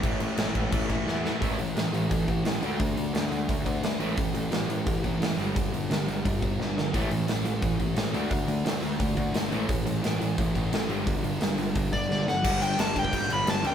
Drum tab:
CC |x-x-x-x-x-x-----|----------------|----------------|----------------|
HH |----------------|o-o-o-o-o-o-o-o-|o-o-o-o-o-o-o-o-|o-o-o-o-o-o-o-o-|
SD |----o-------o-o-|----o-------o---|----o-------o---|----o-------o---|
BD |o-----o-o-o-----|o-------o-o-----|o-------o-o-----|o-------o-o-----|

CC |----------------|----------------|----------------|----------------|
HH |o-o-o-o-o-o-----|o-o-o-o-o-o-o-o-|o-o-o-o-o-o-o-o-|o-o-o-o-o-o-o-o-|
SD |----o-------o-o-|----o-------o---|----o-------o---|----o-------o---|
BD |o-------o-o-----|o-------o-o-----|o-------o-o-----|o-------o-o-----|

CC |----------------|x-x-x-x-x-x-x-x-|
HH |o-o-o-o-o-o-----|----------------|
SD |----o-------o-o-|----o-------o---|
BD |o-------o-o-----|o-----ooo-------|